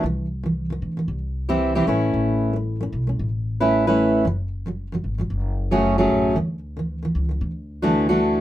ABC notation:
X:1
M:4/4
L:1/16
Q:"Swing 16ths" 1/4=114
K:A
V:1 name="Steel-string acoustic guitar" clef=bass
[=C,E,]2 z [C,E,]2 [C,E,]2 [C,E,]2 z2 [C,E,=CE=G]2 [C,E,CEG] [A,^CEB]2- | [A,CEB]3 [A,C]2 [A,C]2 [A,C]2 z2 [A,CEB]2 [A,CEB]3 | [F,,C,F,]2 z [F,,C,F,]2 [F,,C,F,]2 [F,,C,F,]2 z2 [F,,C,F,A,CG]2 [F,,C,F,A,CG]3 | [D,E,]2 z [D,E,]2 [D,E,]2 [D,E,]2 z2 [D,E,A,DF]2 [D,E,A,DF]3 |]
V:2 name="Upright bass" clef=bass
=C,,6 D,,2 C,,6 A,,,2 | A,,,6 B,,,2 A,,,8 | F,,,6 G,,,2 F,,,6 A,,,2 | D,,6 C,,2 D,,8 |]